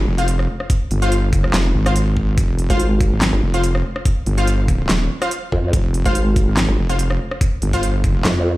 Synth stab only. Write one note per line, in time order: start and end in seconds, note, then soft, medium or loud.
0.18 0.25 F4 medium
0.18 0.25 C5 medium
0.18 0.25 F5 medium
1.02 1.14 F4 medium
1.02 1.14 C5 medium
1.02 1.14 F5 loud
1.86 1.93 F4 medium
1.86 1.93 C5 medium
1.86 1.93 F5 medium
2.70 2.82 F4 medium
2.70 2.82 C5 medium
2.70 2.82 F5 loud
3.54 3.61 F4 medium
3.54 3.61 C5 medium
3.54 3.61 F5 medium
4.38 4.49 F4 medium
4.38 4.49 C5 medium
4.38 4.49 F5 loud
5.22 5.29 F4 medium
5.22 5.29 C5 medium
5.22 5.29 F5 medium
6.06 6.17 F4 medium
6.06 6.17 C5 medium
6.06 6.17 F5 loud
6.89 6.97 F4 medium
6.89 6.97 C5 medium
6.89 6.97 F5 medium
7.73 7.85 F4 medium
7.73 7.85 C5 medium
7.73 7.85 F5 loud